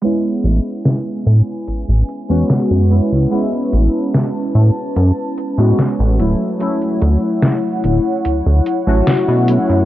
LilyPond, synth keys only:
\new Staff \with { instrumentName = "Synth keys" } { \time 4/4 \key a \major \tempo 4 = 73 <gis b cis' e'>2~ <gis b cis' e'>8. <gis b cis' fis'>16 r8 <gis b cis' e'>8 | <gis b cis' e'>2~ <gis b cis' e'>8. <gis b cis' fis'>16 r8 <fis a cis' e'>8 | <fis a cis' e'>2~ <fis a cis' e'>8. <fis a cis' fis'>16 r8 <fis a cis' e'>8 | }